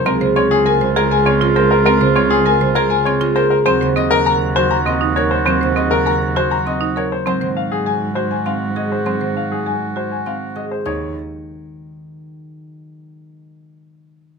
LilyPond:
<<
  \new Staff \with { instrumentName = "Grand piano" } { \time 3/4 \key ees \dorian \tempo 4 = 100 bes'16 r16 des''16 aes'16 aes''16 r16 bes'16 aes''16 des''16 r16 c''16 bes'16 | bes'16 r16 des''16 aes'16 aes''16 r16 bes'16 aes''16 des''16 r16 c''16 bes'16 | c''16 r16 ees''16 bes'16 bes''16 r16 c''16 bes''16 ees''16 r16 des''16 c''16 | c''16 r16 ees''16 bes'16 bes''16 r16 c''16 bes''16 ees''16 r16 des''16 c''16 |
c''16 r16 f''16 aes'16 aes''16 r16 c''16 aes''16 f''16 r16 ees''16 c''16 | c''16 r16 f''16 aes'16 aes''16 r16 c''16 aes''16 f''16 r16 ees''16 c''16 | des''8 r2 r8 | r2. | }
  \new Staff \with { instrumentName = "Marimba" } { \time 3/4 \key ees \dorian c'16 c''16 c'16 r16 bes'16 c''16 aes'16 r16 c'16 f'16 bes'16 r16 | c'16 c''16 c'16 r16 bes'16 c''16 aes'16 r16 c'16 f'16 bes'16 r16 | c'16 c''16 c'16 r16 bes'16 r16 ges'16 r16 c'16 ees'16 bes'16 r16 | c'16 c''16 c'16 r16 bes'16 r16 ges'16 r16 c'16 ees'16 bes'16 r16 |
c'16 c''16 r8 aes'16 r16 ges'16 r16 c'16 r16 aes'16 r16 | c'16 c''16 r8 aes'16 r16 ges'16 r16 c'16 r16 aes'16 r16 | ees'8 r2 r8 | r2. | }
  \new Staff \with { instrumentName = "Oboe" } { \time 3/4 \key ees \dorian f'2.~ | f'2~ f'8. r16 | ges'2.~ | ges'2~ ges'8. r16 |
ges'2.~ | ges'2~ ges'8. r16 | r2. | r2. | }
  \new Staff \with { instrumentName = "Harp" } { \clef bass \time 3/4 \key ees \dorian <aes bes>16 des16 c'8. des16 aes8 c'16 aes16 bes8 | aes16 des16 c'8. des16 aes8 c'16 aes16 bes8 | ges16 des16 c'4 ges8 c'8 bes8 | ges16 des16 c'4 ges8 c'8 bes8 |
ges16 ees4.~ ees16 c'8 aes8 | ges16 ees4.~ ees16 c'8 aes8 | ees8 r2 r8 | r2. | }
  \new Staff \with { instrumentName = "Cello" } { \clef bass \time 3/4 \key ees \dorian des,2.~ | des,2. | ees,2.~ | ees,2. |
aes,2.~ | aes,2. | ees,8 r2 r8 | r2. | }
>>